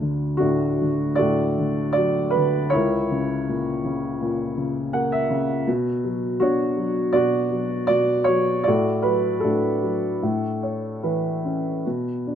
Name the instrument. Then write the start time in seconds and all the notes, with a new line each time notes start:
upright piano
Already playing: D2
0.01 D3
0.37 A3 D4 F#4
0.42 A2
0.82 D3
1.16 F#4 A4 D5
1.20 A2
1.59 D3
1.93 D5
1.97 F#3
2.30 B4
2.36 D3
2.70 E4 A#4 C#5
2.75 C#2
3.11 C#3
3.48 A#2
3.84 C#3
4.21 A#2
4.57 C#3
4.93 A#3 F#5
5.12 E5
5.30 C#3
5.67 B2
6.04 F#3
6.40 B2 D4 F#4 C#5
6.77 F#3
7.13 B2 F#4 D5
7.51 F#3
7.87 B2 D5
8.24 C#5
8.28 F#3
8.64 A2 F#4 D5
8.68 A4
9.02 F#3 B4
9.40 D4 A4
9.44 A2 F#4
9.83 F#3
10.23 A2
10.63 C#5
11.03 E3 B4
11.45 C#4
11.86 B2
12.27 D4